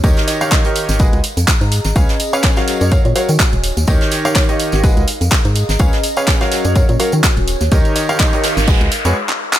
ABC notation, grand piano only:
X:1
M:4/4
L:1/16
Q:"Swing 16ths" 1/4=125
K:Ebm
V:1 name="Grand piano"
[E,=GBde]3 [E,GBdf]2 [E,GBde]3 [A,_GAce] z6 z | [DAcdf] z2 [DAcdf]2 [G,GBdf]3 [G,GBdf] z [G,GBdf] z4 z | [E,=GBde]3 [E,GBdf]2 [E,GBde]3 [A,_GAce] z6 z | [DAcdf] z2 [DAcdf]2 [G,GBdf]3 [G,GBdf] z [G,GBdf] z4 z |
[E,=GBde]3 [E,GBdf]2 [E,GBde]3 [A,_GAce] z2 [A,GAcd] z4 |]